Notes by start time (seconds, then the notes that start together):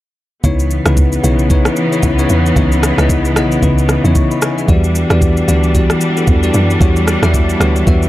0.44 C#2 C#3 E3 B3 D#4 E4 C#5, kick, shaker
0.59 shaker
0.71 shaker
0.85 C#2 C#3 B3 D#4 E4 B4, cross-stick, shaker
0.97 kick, shaker
1.12 shaker
1.23 B1 C#3 B3 D#4 E4 C#5, shaker
1.39 shaker
1.50 C#3 B3 D#4 E4 C#5, kick, shaker
1.65 cross-stick, shaker
1.76 shaker
1.92 C#3 B3 D#4 E4 C#5, shaker
2.03 C#2, kick, shaker
2.18 C#3 B3 D#4 E4 C#5, shaker
2.29 E2, shaker
2.46 shaker
2.56 C#2 C#3 B3 D#4 E4 C#5, kick, shaker
2.72 shaker
2.83 cross-stick, shaker
2.98 C#2 C#3 B3 D#4 E4 D#5, cross-stick, shaker
3.09 kick, shaker
3.25 shaker
3.36 B1 C#3 B3 D#4 E4 D#5, cross-stick, shaker
3.52 shaker
3.62 C#2 C#3 B3 D#4 E4 B4, kick, shaker
3.78 shaker
3.89 cross-stick, shaker
4.04 E2 C#3 B3 D#4 E4 C#5, shaker
4.15 E5 C#6, kick, shaker
4.31 D#5 B5, shaker
4.42 B4 G#5, cross-stick, shaker
4.58 G#4 E5, shaker
4.68 E2 E3 G3 B3 D4 F#4 G4 D5, kick, shaker
4.84 shaker
4.95 shaker
5.10 E2 E3 B3 F#4 G4 D5, cross-stick, shaker
5.22 kick, shaker
5.37 shaker
5.48 D2 E3 B3 F#4 G4 D5, shaker
5.63 shaker
5.74 E3 B3 F#4 G4 D5, kick, shaker
5.90 cross-stick, shaker
6.01 shaker
6.17 E3 B3 F#4 G4 A4, shaker
6.27 E2, kick, shaker
6.43 E3 B3 F#4 G4 D5, shaker
6.54 F#2, shaker
6.70 shaker
6.81 E2 E3 B3 F#4 G4 C#5, kick, shaker
6.96 shaker
7.07 cross-stick, shaker
7.22 E2 E3 B3 F#4 G4 E5, cross-stick, shaker
7.34 kick, shaker
7.49 shaker
7.60 D2 E3 B3 F#4 G4 C#5, cross-stick, shaker
7.76 shaker
7.87 E2 E3 B3 F#4 G4 E5, kick, shaker
8.03 shaker